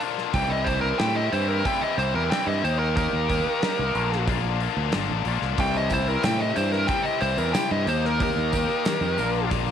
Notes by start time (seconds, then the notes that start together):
0.01 A#2 D3 A#3 D4 F4, open hi-hat
0.18 snare
0.34 C2 C3 E3 G3 C4 E4 G5, kick, open hi-hat
0.50 D#5
0.64 C3 E3 G3 C4 C5, kick, open hi-hat
0.69 E4
0.81 A#4
0.98 A2 C3 E3 G3 C4 G5, snare, open hi-hat
1.02 E4
1.15 D#5
1.32 G2 C3 E3 G3 C4 E4 C5, open hi-hat
1.48 A#4
1.65 C3 E3 G3 C4 E4 G5, kick, open hi-hat
1.81 D#5
1.98 C2 C3 E3 G3 C4 E4 C5, open hi-hat
2.14 E2 A#4
2.30 C3 E3 G3 C4 E4 G5, snare, open hi-hat
2.46 G2 D#5
2.62 D#2 D#3 A#3 D#4 G4 C5, open hi-hat
2.79 A#4
2.95 D#3 A#3 D#4 G4 A#4, kick, open hi-hat
3.13 D#2
3.28 D#3 A#3 D#4 G4, kick, open hi-hat
3.62 D#3 A#3 D#4 G4, snare, open hi-hat
3.79 C2
3.94 A#1 A#2 D3 A#3 D4 F4, open hi-hat
4.12 snare
4.27 A#2 D3 A#3 D4 F4, kick, open hi-hat
4.60 A#2 D3 A#3 D4 F4, open hi-hat
4.77 D2
4.92 G1 A#2 D3 A#3 D4 F4, snare, open hi-hat
5.10 A1
5.25 A#1 A#2 D3 A#3 D4 F4, open hi-hat
5.42 C2, snare
5.58 C2 C3 E3 G3 C4 E4 G4 G5, kick, open hi-hat, tambourine
5.74 D#5, tambourine
5.90 C3 E3 G3 C4 E4 G4 C5, kick, open hi-hat, tambourine
6.08 A#4, tambourine
6.23 A2 C3 E3 G3 C4 E4 G4 G5, snare, open hi-hat, tambourine
6.40 D#5, tambourine
6.54 G2 C3 E3 G3 C4 E4 G4 C5, open hi-hat, tambourine
6.72 A#4, snare, tambourine
6.87 C3 E3 G3 C4 E4 G5, kick, open hi-hat, tambourine
6.91 G4
7.03 D#5, tambourine
7.20 C2 C3 E3 G3 C4 E4 C5, open hi-hat, tambourine
7.38 E2 A#4, tambourine
7.52 C3 E3 G3 C4 E4 G5, snare, open hi-hat, tambourine
7.57 G4
7.71 G2 D#5
7.86 D#2 D#3 A#3 D#4 G4 C5, open hi-hat, tambourine
8.05 A#4, snare
8.19 D#3 G3 A#3 D#4 G4 A#4, kick, open hi-hat, tambourine
8.36 D#2, tambourine
8.53 D#3 A#3 D#4 G4, kick, open hi-hat, tambourine
8.69 tambourine
8.85 D#3 G3 A#3 D#4 G4, snare, open hi-hat, tambourine
9.01 F2, tambourine
9.17 A#1 A#2 D3 A#3 D4 F4 A#4, open hi-hat, tambourine
9.22 F3
9.34 tambourine
9.49 A#2 D3 F3 A#3 D4 F4 A#4, kick, open hi-hat, tambourine
9.66 tambourine